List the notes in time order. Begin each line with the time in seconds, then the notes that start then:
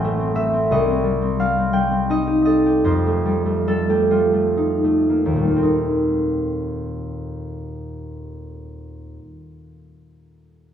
Already playing: A1 C4 E5 G5
0.04 A3
0.19 C4
0.35 A3 E5
0.53 C4
0.71 C2 D#5
0.88 C4
1.04 G3
1.22 C4
1.39 G3 F5
1.58 C4
1.73 G3 G5
1.91 C4
2.09 D#4 D#5
2.27 G4
2.45 A4 D#5
2.66 G4
2.84 F2 C5
3.06 A3
3.26 G3
3.46 A3
3.67 G3 A4
3.89 A3 G4
4.10 G3 F4
4.33 A3
4.57 D#4
4.84 A3
5.09 A#3
5.26 D#2
5.33 A#2 A3
5.41 G3
5.47 A#3
5.56 C4
5.63 D#4